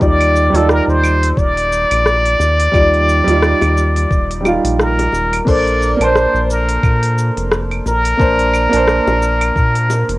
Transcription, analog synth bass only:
0.01 0.49 D#2 loud
0.53 0.81 D#2 medium
0.88 1.33 D#2 medium
1.37 1.85 D#1 medium
1.91 2.35 A#1 medium
2.39 2.68 D#2 medium
2.74 3.22 D#2 loud
3.27 3.54 D#2 medium
3.62 4.06 D#2 medium
4.11 4.58 D#1 medium
4.64 5.08 A#1 loud
5.12 5.41 D#1 medium
5.47 5.95 A#1 loud
6.00 6.27 A#1 medium
6.34 6.78 A#1 medium
6.83 7.31 A#2 medium
7.37 7.81 F1 loud
7.85 8.14 A#1 medium
8.19 8.67 A#1 loud
8.73 9.00 A#1 loud
9.07 9.51 A#1 medium
9.56 10.04 A#2 medium
10.08 10.19 F1 loud

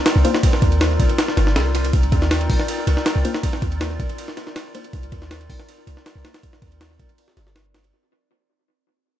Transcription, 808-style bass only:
0.16 0.24 C2 medium
0.62 0.98 D#2 medium
1.00 1.08 A#1 loud
1.37 1.57 G1 medium
1.56 1.92 C2 medium
1.93 2.10 C2 loud
2.12 2.48 D#2 medium
2.50 2.58 A#1 loud
2.87 2.96 C2 medium
3.16 3.24 C2 medium
3.62 3.98 D#2 medium
4.00 4.08 A#1 loud
4.93 5.10 C2 loud
5.12 5.48 D#2 medium
5.50 5.58 A#1 loud
5.87 5.96 C2 medium
6.15 6.24 C2 medium
6.62 6.98 D#2 medium
7.00 7.08 A#1 loud
7.37 7.92 G1 medium

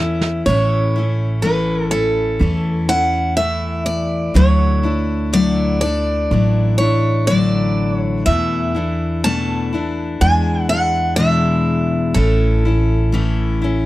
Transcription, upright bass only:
0.00 0.42 E2 loud
0.46 2.37 A1 medium
2.41 4.32 E2 medium
4.35 6.27 D2 medium
6.31 8.22 A1 medium
8.27 10.17 E2 medium
10.21 12.12 E2 medium
12.15 13.86 A1 medium

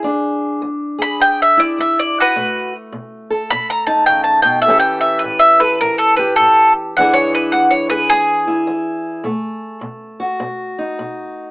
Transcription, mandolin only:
0.00 0.61 G#4 loud
1.02 1.20 B5 loud
1.22 1.40 G5 loud
1.42 1.60 E5 medium
1.60 1.78 D5 medium
1.80 1.98 E5 medium
1.99 2.17 D5 medium
2.20 2.72 F#4 medium
2.20 2.75 B4 medium
3.50 3.69 B5 loud
3.70 3.86 A#5 medium
3.87 4.06 A5 medium
4.06 4.23 G5 medium
4.24 4.42 A5 medium
4.42 4.61 G5 medium
4.62 4.79 E5 medium
4.80 5.00 G5 medium
5.01 5.21 E5 medium
5.19 5.40 B4 medium
5.39 5.60 E5 medium
5.60 5.80 B4 medium
5.81 5.98 A#4 medium
5.98 6.16 A4 medium
6.17 6.36 B4 medium
6.36 6.72 A4 loud
6.97 7.15 F#5 loud
7.13 7.33 C#5 medium
7.35 7.53 B4 medium
7.52 7.71 F#5 medium
7.71 7.89 C#5 medium
7.90 8.09 B4 loud
8.10 9.79 G#4 loud

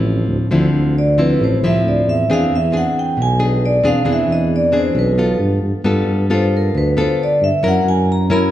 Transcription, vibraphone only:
0.98 1.18 D5 medium
1.20 1.40 B4 medium
1.44 1.63 C5 medium
1.66 1.85 E5 medium
1.88 2.08 D5 medium
2.09 2.29 E5 medium
2.33 2.52 F5 medium
2.55 2.74 E5 medium
2.77 2.96 F#5 medium
2.99 3.19 G5 medium
3.22 3.41 G#5 loud
3.43 3.63 B4 medium
3.66 3.85 D5 medium
3.87 4.07 F5 medium
4.12 4.31 E5 medium
4.32 4.52 D#5 medium
4.56 4.75 D5 medium
4.77 4.97 C5 medium
4.99 5.38 B4 medium
6.34 6.53 C5 medium
6.57 6.75 A#4 medium
6.78 6.97 B4 medium
7.00 7.19 C5 medium
7.23 7.42 D5 medium
7.44 7.64 E5 medium
7.68 7.87 F#5 medium
7.88 8.08 G#5 medium
8.12 8.31 A#5 medium
8.33 8.51 B5 loud

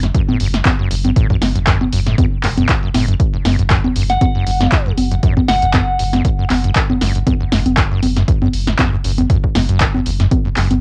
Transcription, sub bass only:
0.00 0.10 F#1 medium
0.40 0.61 F#1 medium
0.91 1.12 F#1 loud
1.42 1.53 F#1 loud
1.56 1.75 F#1 medium
1.93 2.13 F#1 medium
2.43 2.64 E1 medium
2.94 3.15 F#1 medium
3.45 3.56 F#1 loud
3.59 3.79 F#1 medium
3.96 4.17 F#1 medium
4.47 4.68 F#1 medium
4.98 5.18 F#1 medium
5.48 5.60 F#1 loud
5.62 5.82 F#1 medium
5.99 6.20 F#1 medium
6.50 6.71 F#1 medium
7.01 7.22 F#1 medium
7.52 7.63 F#1 loud
7.66 7.86 F#1 medium
8.03 8.23 F#1 medium
8.54 8.74 F#1 medium
9.04 9.25 F#1 medium
9.55 9.66 F#1 loud
9.69 9.89 F#1 medium
10.06 10.27 F#1 medium
10.57 10.78 F#1 medium

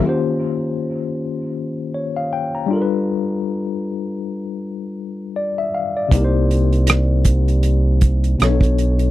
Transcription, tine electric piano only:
0.00 2.64 D#3 medium
0.00 2.65 A#3 medium
0.00 2.66 C#4 medium
0.05 2.66 F4 medium
0.05 2.67 G4 medium
0.05 1.55 C5 medium
1.94 2.15 C#5 medium
2.17 2.31 F5 medium
2.33 2.53 G5 medium
2.55 2.90 A#5 soft
2.66 5.68 G3 medium
2.66 5.69 D4 medium
2.71 5.70 F4 medium
2.71 5.71 A4 medium
2.75 2.80 A#4 medium
2.82 5.76 B4 medium
5.36 5.57 D5 medium
5.58 5.73 E5 medium
5.75 5.95 F5 medium
5.97 6.32 D5 medium
6.08 8.34 C3 medium
6.08 8.35 A#3 medium
6.13 8.36 D#4 medium
6.13 8.37 G4 medium
6.18 6.22 A#4 medium
6.24 8.42 C5 medium
8.38 9.11 B2 medium
8.38 9.11 B3 medium
8.38 8.48 C#4 soft
8.38 9.11 A4 medium
8.43 9.11 C#5 medium
8.47 9.11 D4 medium

